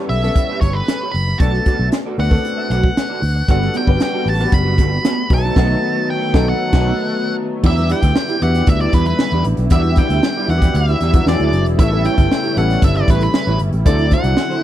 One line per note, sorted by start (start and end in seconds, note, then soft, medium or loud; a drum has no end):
0.00 0.22 G3 medium
0.00 0.22 B3 medium
0.00 0.22 C#4 medium
0.00 0.23 E4 medium
0.00 1.42 G4 medium
0.00 0.23 A4 medium
0.09 0.28 B1 medium
0.09 0.60 E5 medium
0.09 muted clean electric guitar stroke soft
0.09 open hi-hat medium
0.22 1.18 G3 medium
0.22 1.18 B3 medium
0.22 1.18 C#4 medium
0.22 1.18 E4 medium
0.22 1.18 A4 medium
0.22 muted clean electric guitar stroke soft
0.22 snare soft
0.36 muted clean electric guitar stroke medium
0.36 kick loud
0.36 closed hi-hat medium
0.49 0.60 G4 medium
0.49 0.61 B4 medium
0.49 0.63 E5 medium
0.61 0.80 G1 medium
0.61 0.75 G4 medium
0.61 0.74 B4 medium
0.61 0.75 C#5 medium
0.61 0.73 C#5 medium
0.61 kick medium
0.61 closed hi-hat medium
0.73 1.14 B4 medium
0.73 muted clean electric guitar stroke soft
0.88 muted clean electric guitar stroke soft
0.88 snare loud
0.88 closed hi-hat medium
1.01 1.12 G4 medium
1.01 1.13 B4 medium
1.01 1.13 C#5 medium
1.12 1.33 F#1 medium
1.12 1.40 B5 loud
1.12 muted clean electric guitar stroke soft
1.12 open hi-hat medium
1.27 muted clean electric guitar stroke soft
1.39 1.59 B1 loud
1.39 2.11 A3 medium
1.39 2.11 B3 medium
1.39 2.11 D4 medium
1.39 1.57 F#4 medium
1.39 2.12 F#4 medium
1.39 1.53 A4 medium
1.39 2.12 A4 medium
1.39 1.52 D5 medium
1.39 1.88 A5 medium
1.39 kick loud
1.39 closed hi-hat medium
1.53 muted clean electric guitar stroke soft
1.53 snare soft
1.66 1.79 F#4 medium
1.66 1.79 A4 medium
1.66 1.79 D5 medium
1.66 kick medium
1.66 closed hi-hat medium
1.79 1.89 B1 loud
1.79 1.92 F#4 soft
1.79 1.92 A4 soft
1.79 1.93 E5 medium
1.92 muted clean electric guitar stroke soft
1.92 snare medium
1.92 closed hi-hat medium
2.05 2.17 F#4 medium
2.05 2.18 A4 medium
2.05 2.18 D5 medium
2.18 2.37 D2 medium
2.18 2.29 A3 medium
2.18 2.29 B3 medium
2.18 2.30 D4 medium
2.18 2.30 F#4 medium
2.18 2.30 A4 medium
2.18 2.70 F#5 medium
2.18 muted clean electric guitar stroke soft
2.18 open hi-hat medium
2.31 3.26 A3 medium
2.31 3.26 B3 medium
2.31 2.37 C4 soft
2.31 3.27 F#4 medium
2.31 3.27 A4 medium
2.31 muted clean electric guitar stroke soft
2.31 kick medium
2.37 3.29 D4 medium
2.45 muted clean electric guitar stroke soft
2.45 closed hi-hat medium
2.57 2.69 F#4 medium
2.57 2.70 A4 medium
2.57 2.71 E5 medium
2.70 2.89 B1 medium
2.70 2.88 F#4 medium
2.70 2.83 A4 medium
2.70 2.82 D5 medium
2.70 3.50 F#5 loud
2.70 closed hi-hat medium
2.83 muted clean electric guitar stroke soft
2.83 kick loud
2.96 muted clean electric guitar stroke soft
2.96 snare loud
2.96 closed hi-hat medium
3.09 3.21 F#4 medium
3.09 3.22 A4 medium
3.09 3.22 D5 medium
3.22 3.41 D2 medium
3.22 muted clean electric guitar stroke soft
3.22 open hi-hat medium
3.35 muted clean electric guitar stroke soft
3.47 3.67 G1 loud
3.47 5.28 G3 medium
3.47 3.84 G3 medium
3.47 7.60 A3 medium
3.47 5.28 B3 medium
3.47 3.65 B3 medium
3.47 3.84 B3 medium
3.47 3.84 D4 medium
3.47 5.28 F#4 medium
3.47 3.61 F#4 loud
3.47 3.84 F#4 medium
3.47 3.59 A4 loud
3.47 3.84 A4 medium
3.47 3.76 F#5 loud
3.47 kick loud
3.47 closed hi-hat medium
3.61 muted clean electric guitar stroke soft
3.61 snare soft
3.74 3.87 B3 medium
3.74 3.86 F#4 medium
3.74 3.86 A4 medium
3.74 4.02 G5 medium
3.74 closed hi-hat medium
3.87 3.97 G1 medium
3.87 4.35 G3 medium
3.87 4.35 B3 medium
3.87 3.99 B3 soft
3.87 4.35 D4 medium
3.87 4.00 F#4 medium
3.87 4.35 F#4 medium
3.87 4.00 B4 medium
3.87 4.35 B4 medium
3.87 kick medium
4.00 4.28 G5 medium
4.00 muted clean electric guitar stroke soft
4.00 snare loud
4.00 closed hi-hat medium
4.13 4.24 B3 medium
4.13 4.25 F#4 medium
4.13 4.26 A4 medium
4.26 4.45 A1 medium
4.26 4.52 A5 loud
4.26 muted clean electric guitar stroke soft
4.26 open hi-hat medium
4.39 5.30 G3 medium
4.39 5.30 B3 medium
4.39 5.30 D4 medium
4.39 5.30 F#4 medium
4.39 5.31 B4 medium
4.39 muted clean electric guitar stroke soft
4.39 snare soft
4.52 4.78 F#1 loud
4.52 5.33 B5 loud
4.52 muted clean electric guitar stroke soft
4.52 kick loud
4.52 closed hi-hat medium
4.65 4.77 B3 medium
4.65 4.77 F#4 medium
4.65 4.79 B4 medium
4.78 4.97 G1 medium
4.78 4.95 B3 medium
4.78 4.91 F#4 medium
4.78 4.90 A4 medium
4.78 kick medium
4.78 closed hi-hat medium
4.92 muted clean electric guitar stroke soft
5.04 5.22 B3 medium
5.04 5.17 F#4 medium
5.04 5.16 A4 medium
5.04 snare loud
5.04 closed hi-hat loud
5.17 muted clean electric guitar stroke soft
5.30 5.49 B1 medium
5.30 7.62 D#3 medium
5.30 5.55 F#3 medium
5.30 7.62 F#3 medium
5.30 5.55 A3 medium
5.30 7.62 B3 medium
5.30 5.56 B3 medium
5.30 5.56 D#4 medium
5.30 5.37 G#4 medium
5.30 6.10 A5 loud
5.30 muted clean electric guitar stroke soft
5.30 kick loud
5.30 open hi-hat medium
5.38 5.60 A4 loud
5.43 5.55 B3 medium
5.43 5.56 D#4 medium
5.43 5.56 A4 medium
5.56 5.74 B1 loud
5.56 5.74 F#3 loud
5.56 5.74 A3 loud
5.56 5.74 B3 loud
5.56 5.74 D#4 loud
5.56 5.75 A4 loud
5.56 kick loud
5.56 snare loud
5.56 crash medium
5.64 5.78 A4 medium
6.10 6.49 G5 medium
6.34 6.52 B1 medium
6.34 6.51 F#3 loud
6.34 6.52 A3 loud
6.34 6.52 B3 loud
6.34 6.52 D#4 loud
6.34 6.52 A4 loud
6.34 kick loud
6.34 snare loud
6.49 7.35 F#5 medium
6.73 6.91 B1 loud
6.73 6.91 F#3 loud
6.73 6.91 A3 loud
6.73 6.91 B3 loud
6.73 6.91 D#4 loud
6.73 6.90 B4 loud
6.73 kick loud
6.73 snare loud
6.73 crash medium
6.80 6.95 A4 loud
7.63 7.92 E2 loud
7.63 11.23 D3 medium
7.63 7.75 F#3 medium
7.63 11.23 G3 medium
7.63 11.74 B3 medium
7.63 7.75 B3 medium
7.63 7.76 D4 medium
7.63 7.81 E4 medium
7.63 14.63 E4 medium
7.63 7.76 E4 medium
7.63 7.76 G4 medium
7.63 7.75 D5 medium
7.63 7.89 E5 loud
7.63 kick loud
7.63 crash loud
7.77 8.36 G3 medium
7.77 8.36 B3 medium
7.77 8.36 D4 medium
7.77 8.37 E4 medium
7.77 8.37 G4 medium
7.77 muted clean electric guitar stroke soft
7.77 snare soft
7.77 closed hi-hat soft
7.89 8.02 E4 medium
7.89 8.02 G4 medium
7.89 8.02 D5 medium
7.89 8.43 G5 loud
7.89 closed hi-hat medium
8.02 8.12 D2 medium
8.02 8.14 E4 medium
8.02 8.14 G4 medium
8.02 8.15 E5 medium
8.02 kick medium
8.02 closed hi-hat medium
8.15 muted clean electric guitar stroke soft
8.15 snare loud
8.28 8.40 E4 medium
8.28 8.40 G4 medium
8.28 8.41 D5 medium
8.28 snare soft
8.28 closed hi-hat soft
8.41 8.61 E2 medium
8.41 9.37 B3 medium
8.41 9.37 D4 medium
8.41 9.37 E4 medium
8.41 9.36 F#4 medium
8.41 9.37 G4 medium
8.41 8.69 F#5 medium
8.41 muted clean electric guitar stroke soft
8.41 closed hi-hat medium
8.54 muted clean electric guitar stroke soft
8.54 snare soft
8.54 closed hi-hat medium
8.67 8.86 D2 medium
8.67 8.80 E5 loud
8.67 muted clean electric guitar stroke soft
8.67 kick loud
8.67 closed hi-hat medium
8.80 8.92 E4 medium
8.80 8.93 G4 medium
8.80 8.93 D5 medium
8.80 8.94 E5 medium
8.80 closed hi-hat soft
8.93 9.12 E2 loud
8.93 9.11 E4 medium
8.93 9.07 G4 medium
8.93 9.05 B4 medium
8.93 9.06 D5 medium
8.93 kick medium
8.93 closed hi-hat medium
9.06 9.43 B4 medium
9.06 muted clean electric guitar stroke soft
9.06 closed hi-hat medium
9.19 muted clean electric guitar stroke soft
9.19 snare loud
9.31 9.42 E2 medium
9.31 9.45 E4 medium
9.31 9.45 G4 medium
9.31 9.46 D5 medium
9.31 closed hi-hat soft
9.44 9.55 A1 medium
9.44 muted clean electric guitar stroke soft
9.44 closed hi-hat medium
9.57 9.67 B1 medium
9.57 muted clean electric guitar stroke medium
9.57 closed hi-hat soft
9.70 9.99 E2 loud
9.70 10.42 G3 medium
9.70 10.42 B3 medium
9.70 10.43 D4 medium
9.70 9.88 E4 medium
9.70 10.43 E4 medium
9.70 9.78 F#4 medium
9.70 9.84 G4 medium
9.70 9.83 D5 loud
9.70 9.98 E5 loud
9.70 kick loud
9.70 closed hi-hat loud
9.79 10.46 G4 medium
9.84 muted clean electric guitar stroke soft
9.84 closed hi-hat soft
9.96 10.10 E4 medium
9.96 10.09 G4 medium
9.96 10.10 D5 medium
9.96 10.50 G5 loud
9.96 kick medium
9.96 closed hi-hat medium
10.09 10.19 D2 medium
10.09 10.22 E4 medium
10.09 10.22 G4 medium
10.09 10.24 E5 medium
10.09 closed hi-hat medium
10.23 muted clean electric guitar stroke soft
10.23 snare loud
10.36 10.48 E4 medium
10.36 10.49 G4 medium
10.36 10.49 D5 medium
10.48 10.67 E2 medium
10.48 11.09 B3 medium
10.48 11.09 D4 medium
10.48 11.09 E4 medium
10.48 10.56 F#4 medium
10.48 10.74 F#5 loud
10.48 muted clean electric guitar stroke soft
10.48 closed hi-hat medium
10.57 11.12 G4 medium
10.62 muted clean electric guitar stroke soft
10.62 kick medium
10.62 snare soft
10.62 closed hi-hat medium
10.74 10.93 D2 loud
10.74 11.28 E5 loud
10.74 muted clean electric guitar stroke soft
10.74 closed hi-hat medium
10.88 11.00 E4 medium
10.88 11.01 G4 medium
10.88 11.02 E5 medium
10.88 closed hi-hat soft
11.01 11.20 E2 medium
11.01 11.18 E4 medium
11.01 11.14 G4 medium
11.01 11.13 D5 medium
11.01 closed hi-hat medium
11.13 11.25 F#3 medium
11.13 11.26 B3 medium
11.13 11.26 D4 medium
11.13 11.26 E4 medium
11.13 11.27 F#4 medium
11.13 muted clean electric guitar stroke soft
11.13 kick loud
11.13 closed hi-hat medium
11.26 11.36 E2 medium
11.26 11.78 D3 medium
11.26 11.74 F#3 medium
11.26 11.79 G#3 medium
11.26 11.74 B3 medium
11.26 11.74 D4 medium
11.26 11.75 E4 medium
11.26 11.34 G4 medium
11.26 11.64 D5 medium
11.26 muted clean electric guitar stroke soft
11.26 snare loud
11.34 11.78 G#4 medium
11.40 11.49 D2 medium
11.40 11.52 E4 medium
11.40 11.53 G#4 medium
11.40 11.53 D5 medium
11.40 closed hi-hat soft
11.52 11.65 F#1 loud
11.52 muted clean electric guitar stroke soft
11.52 closed hi-hat medium
11.65 11.75 E1 medium
11.65 muted clean electric guitar stroke medium
11.65 closed hi-hat soft
11.78 12.07 A1 loud
11.78 13.84 C#3 medium
11.78 11.90 G3 medium
11.78 13.84 G3 medium
11.78 13.84 A3 medium
11.78 11.90 B3 medium
11.78 11.90 C#4 medium
11.78 11.95 E4 medium
11.78 11.90 E4 medium
11.78 11.91 G4 medium
11.78 11.91 A4 medium
11.78 11.90 C#5 loud
11.78 12.06 E5 loud
11.78 kick loud
11.78 closed hi-hat loud
11.91 12.51 G3 medium
11.91 12.51 B3 medium
11.91 12.51 C#4 medium
11.91 12.51 E4 medium
11.91 12.51 A4 medium
11.91 muted clean electric guitar stroke soft
11.91 closed hi-hat soft
12.04 12.17 E4 medium
12.04 12.17 G4 medium
12.04 12.16 C#5 medium
12.04 12.58 G5 loud
12.04 closed hi-hat medium
12.17 12.27 G1 medium
12.17 12.29 E4 medium
12.17 12.29 G4 medium
12.17 12.31 E5 medium
12.17 kick loud
12.17 closed hi-hat medium
12.30 muted clean electric guitar stroke soft
12.30 snare loud
12.43 12.55 E4 medium
12.43 12.56 G4 medium
12.43 12.56 C#5 medium
12.43 closed hi-hat soft
12.57 12.76 A1 medium
12.57 13.51 G3 medium
12.57 13.51 B3 medium
12.57 13.52 C#4 medium
12.57 13.52 E4 medium
12.57 13.52 A4 medium
12.57 12.81 F#5 loud
12.57 muted clean electric guitar stroke soft
12.57 closed hi-hat medium
12.69 muted clean electric guitar stroke medium
12.69 snare soft
12.69 closed hi-hat soft
12.82 13.01 G1 medium
12.82 12.95 E5 loud
12.82 muted clean electric guitar stroke soft
12.82 kick loud
12.82 closed hi-hat medium
12.95 13.07 E4 medium
12.95 13.08 G4 medium
12.95 13.09 D5 medium
12.95 13.09 E5 medium
12.95 closed hi-hat soft
13.08 13.27 A1 medium
13.08 13.25 E4 medium
13.08 13.21 G4 medium
13.08 13.22 B4 medium
13.08 13.20 C#5 loud
13.08 kick loud
13.08 closed hi-hat medium
13.21 13.58 B4 medium
13.21 muted clean electric guitar stroke soft
13.21 closed hi-hat medium
13.34 muted clean electric guitar stroke soft
13.34 snare loud
13.47 13.56 A1 medium
13.47 13.58 E4 medium
13.47 13.59 G4 medium
13.47 13.59 C#5 medium
13.47 closed hi-hat soft
13.59 13.69 G1 medium
13.59 muted clean electric guitar stroke soft
13.59 closed hi-hat medium
13.73 13.82 A1 medium
13.73 muted clean electric guitar stroke soft
13.73 closed hi-hat soft
13.85 14.14 D2 loud
13.85 14.63 D3 medium
13.85 13.92 E3 medium
13.85 14.63 F#3 medium
13.85 14.63 C4 medium
13.85 14.56 C4 medium
13.85 14.57 D4 medium
13.85 14.03 E4 medium
13.85 14.57 E4 medium
13.85 13.98 F#4 loud
13.85 14.57 A4 medium
13.85 13.97 C5 loud
13.85 14.13 D5 loud
13.85 kick loud
13.85 closed hi-hat medium
13.91 14.60 F#3 medium
13.98 muted clean electric guitar stroke soft
13.98 closed hi-hat soft
14.11 14.24 E4 medium
14.11 14.24 F#4 medium
14.11 14.24 C5 medium
14.11 14.63 F#5 loud
14.11 kick medium
14.11 closed hi-hat medium
14.23 14.33 C2 medium
14.23 14.36 E4 medium
14.23 14.37 F#4 medium
14.23 14.38 D5 medium
14.23 closed hi-hat medium
14.37 muted clean electric guitar stroke soft
14.37 snare loud
14.50 14.62 E4 medium
14.50 14.62 F#4 medium
14.50 14.63 C5 medium
14.50 snare soft